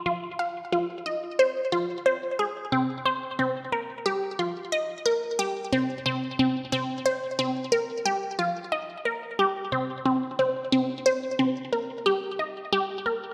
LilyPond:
\new Staff \with { instrumentName = "Synth arpeggio sound" } { \time 4/4 \key c \phrygian \tempo 4 = 90 f'8 f''8 f'8 ees''8 c''8 f'8 c''8 aes'8 | c'8 c''8 c'8 bes'8 g'8 f'8 ees''8 bes'8 | g'8 c'8 c'8 c'8 c'8 c''8 c'8 bes'8 | g'8 f'8 ees''8 bes'8 g'8 c'8 c'8 c'8 |
c'8 c''8 c'8 bes'8 g'8 ees''8 g'8 bes'8 | }